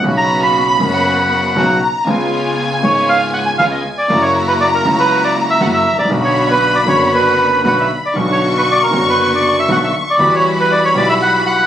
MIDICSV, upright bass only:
0, 0, Header, 1, 2, 480
1, 0, Start_track
1, 0, Key_signature, 2, "minor"
1, 0, Tempo, 507185
1, 40, Time_signature, 4, 2, 24, 8
1, 11042, End_track
2, 0, Start_track
2, 0, Title_t, "Upright bass"
2, 0, Program_c, 0, 32
2, 42, Note_on_c, 0, 35, 83
2, 728, Note_off_c, 0, 35, 0
2, 759, Note_on_c, 0, 30, 80
2, 1446, Note_off_c, 0, 30, 0
2, 1474, Note_on_c, 0, 35, 87
2, 1681, Note_off_c, 0, 35, 0
2, 1959, Note_on_c, 0, 37, 86
2, 2645, Note_off_c, 0, 37, 0
2, 2686, Note_on_c, 0, 32, 80
2, 3365, Note_off_c, 0, 32, 0
2, 3402, Note_on_c, 0, 37, 93
2, 3601, Note_off_c, 0, 37, 0
2, 3879, Note_on_c, 0, 30, 93
2, 4557, Note_off_c, 0, 30, 0
2, 4593, Note_on_c, 0, 37, 86
2, 5273, Note_off_c, 0, 37, 0
2, 5306, Note_on_c, 0, 30, 96
2, 5508, Note_off_c, 0, 30, 0
2, 5612, Note_on_c, 0, 32, 51
2, 5656, Note_off_c, 0, 32, 0
2, 5662, Note_on_c, 0, 33, 56
2, 5719, Note_off_c, 0, 33, 0
2, 5725, Note_on_c, 0, 34, 74
2, 5781, Note_off_c, 0, 34, 0
2, 5787, Note_on_c, 0, 35, 91
2, 6470, Note_off_c, 0, 35, 0
2, 6505, Note_on_c, 0, 30, 90
2, 7199, Note_off_c, 0, 30, 0
2, 7240, Note_on_c, 0, 35, 87
2, 7444, Note_off_c, 0, 35, 0
2, 7724, Note_on_c, 0, 35, 79
2, 8412, Note_off_c, 0, 35, 0
2, 8452, Note_on_c, 0, 30, 89
2, 9132, Note_off_c, 0, 30, 0
2, 9167, Note_on_c, 0, 35, 94
2, 9367, Note_off_c, 0, 35, 0
2, 9644, Note_on_c, 0, 40, 87
2, 10325, Note_off_c, 0, 40, 0
2, 10359, Note_on_c, 0, 35, 82
2, 11039, Note_off_c, 0, 35, 0
2, 11042, End_track
0, 0, End_of_file